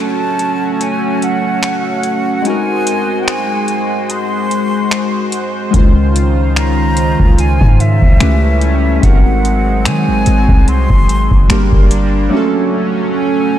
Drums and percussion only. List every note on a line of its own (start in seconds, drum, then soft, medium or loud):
0.39 closed hi-hat medium
0.81 closed hi-hat medium
1.22 closed hi-hat medium
1.63 finger snap loud
1.63 closed hi-hat medium
2.03 closed hi-hat medium
2.45 closed hi-hat medium
2.87 closed hi-hat medium
3.28 finger snap loud
3.28 closed hi-hat medium
3.68 closed hi-hat medium
4.10 closed hi-hat medium
4.51 closed hi-hat medium
4.91 finger snap loud
4.91 closed hi-hat medium
5.32 closed hi-hat medium
5.74 kick loud
5.74 closed hi-hat medium
6.16 closed hi-hat medium
6.56 finger snap loud
6.56 closed hi-hat medium
6.97 closed hi-hat medium
7.20 kick medium
7.38 closed hi-hat medium
7.61 kick medium
7.80 closed hi-hat medium
8.02 kick loud
8.20 finger snap loud
8.20 closed hi-hat medium
8.61 closed hi-hat medium
9.03 kick loud
9.03 closed hi-hat medium
9.45 closed hi-hat medium
9.85 finger snap loud
9.85 closed hi-hat medium
10.26 closed hi-hat medium
10.49 kick medium
10.68 closed hi-hat medium
10.90 kick medium
11.09 closed hi-hat medium
11.31 kick medium
11.50 finger snap loud
11.50 closed hi-hat medium
11.72 kick medium
11.91 closed hi-hat medium